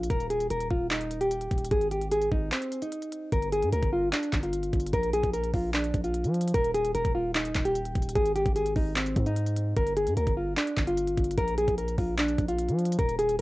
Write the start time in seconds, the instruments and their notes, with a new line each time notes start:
0.03 closed hi-hat
0.10 808-style bass D#1, nylon-string guitar A#4, kick, closed hi-hat
0.20 closed hi-hat
0.30 nylon-string guitar G#4, closed hi-hat
0.40 closed hi-hat
0.50 808-style bass D#1, nylon-string guitar A#4, closed hi-hat
0.60 closed hi-hat
0.70 808-style bass D#1, nylon-string guitar F4, kick
0.91 nylon-string guitar D#4, clap, closed hi-hat
1.01 closed hi-hat
1.11 closed hi-hat
1.21 nylon-string guitar G4, closed hi-hat
1.31 closed hi-hat
1.41 closed hi-hat
1.51 808-style bass D#1, kick, closed hi-hat
1.58 closed hi-hat
1.65 closed hi-hat
1.71 808-style bass G#1, nylon-string guitar G#4, kick, closed hi-hat
1.81 closed hi-hat
1.91 nylon-string guitar G4, closed hi-hat
2.01 closed hi-hat
2.11 nylon-string guitar G#4, closed hi-hat
2.22 closed hi-hat
2.32 808-style bass G#1, nylon-string guitar D#4, kick
2.52 nylon-string guitar C4, clap, closed hi-hat
2.62 closed hi-hat
2.72 closed hi-hat
2.82 nylon-string guitar D#4, closed hi-hat
2.92 closed hi-hat
3.02 closed hi-hat
3.12 closed hi-hat
3.32 808-style bass G1, nylon-string guitar A#4, kick, closed hi-hat
3.42 closed hi-hat
3.52 nylon-string guitar G#4, closed hi-hat
3.62 808-style bass G2, closed hi-hat
3.73 808-style bass D2, nylon-string guitar A#4, closed hi-hat
3.83 808-style bass G1, kick, closed hi-hat
3.93 nylon-string guitar F4
4.13 nylon-string guitar D4, clap, closed hi-hat
4.23 closed hi-hat
4.33 808-style bass G1, kick, clap, closed hi-hat
4.43 nylon-string guitar F4, closed hi-hat
4.53 closed hi-hat
4.63 closed hi-hat
4.73 808-style bass G1, kick, closed hi-hat
4.80 closed hi-hat
4.87 closed hi-hat
4.93 808-style bass A#1, nylon-string guitar A#4, kick, closed hi-hat
5.03 closed hi-hat
5.13 nylon-string guitar G#4, closed hi-hat
5.24 808-style bass A#1, kick, closed hi-hat
5.34 nylon-string guitar A#4, closed hi-hat
5.44 closed hi-hat
5.54 808-style bass A#1, nylon-string guitar F4, kick, open hi-hat
5.74 nylon-string guitar D4, clap, closed hi-hat
5.84 closed hi-hat
5.94 808-style bass A#1, kick, closed hi-hat
6.04 nylon-string guitar F4, closed hi-hat
6.14 closed hi-hat
6.24 808-style bass F3, closed hi-hat
6.34 closed hi-hat
6.41 closed hi-hat
6.48 closed hi-hat
6.54 808-style bass D#1, nylon-string guitar A#4, kick, closed hi-hat
6.65 closed hi-hat
6.74 nylon-string guitar G#4, closed hi-hat
6.85 closed hi-hat
6.95 808-style bass D#1, nylon-string guitar A#4, closed hi-hat
7.05 808-style bass D#1, kick, closed hi-hat
7.15 nylon-string guitar F4
7.35 nylon-string guitar D#4, clap, closed hi-hat
7.45 closed hi-hat
7.55 808-style bass D#1, kick, clap, closed hi-hat
7.65 nylon-string guitar G4, closed hi-hat
7.75 closed hi-hat
7.85 closed hi-hat
7.95 808-style bass D#1, kick, closed hi-hat
8.02 closed hi-hat
8.09 closed hi-hat
8.15 808-style bass G#1, nylon-string guitar G#4, kick, closed hi-hat
8.26 closed hi-hat
8.35 nylon-string guitar G4, closed hi-hat
8.46 808-style bass G#1, kick, closed hi-hat
8.56 nylon-string guitar G#4, closed hi-hat
8.66 closed hi-hat
8.76 808-style bass G#1, nylon-string guitar D#4, kick, open hi-hat
8.96 nylon-string guitar C4, clap, closed hi-hat
9.06 closed hi-hat
9.16 808-style bass G#2, kick, closed hi-hat
9.26 nylon-string guitar D#4, closed hi-hat
9.36 closed hi-hat
9.46 closed hi-hat
9.56 closed hi-hat
9.77 808-style bass G1, nylon-string guitar A#4, kick, closed hi-hat
9.87 closed hi-hat
9.97 nylon-string guitar G#4, closed hi-hat
10.07 808-style bass G2, closed hi-hat
10.17 808-style bass D2, nylon-string guitar A#4, closed hi-hat
10.27 808-style bass G1, kick, closed hi-hat
10.37 nylon-string guitar F4
10.57 nylon-string guitar D4, clap, closed hi-hat
10.67 closed hi-hat
10.77 808-style bass G1, kick, clap, closed hi-hat
10.87 nylon-string guitar F4, closed hi-hat
10.97 closed hi-hat
11.07 closed hi-hat
11.17 808-style bass G1, kick, closed hi-hat
11.24 closed hi-hat
11.31 closed hi-hat
11.38 808-style bass A#1, nylon-string guitar A#4, kick, closed hi-hat
11.48 closed hi-hat
11.58 nylon-string guitar G#4, closed hi-hat
11.68 808-style bass A#1, kick, closed hi-hat
11.78 nylon-string guitar A#4, closed hi-hat
11.88 closed hi-hat
11.98 808-style bass A#1, nylon-string guitar F4, kick, open hi-hat
12.18 nylon-string guitar D4, clap, closed hi-hat
12.28 closed hi-hat
12.38 808-style bass A#1, kick, closed hi-hat
12.48 nylon-string guitar F4, closed hi-hat
12.58 closed hi-hat
12.69 808-style bass F3, closed hi-hat
12.79 closed hi-hat
12.85 closed hi-hat
12.92 closed hi-hat
12.99 808-style bass D#1, nylon-string guitar A#4, kick, closed hi-hat
13.09 closed hi-hat
13.19 nylon-string guitar G#4, closed hi-hat
13.29 closed hi-hat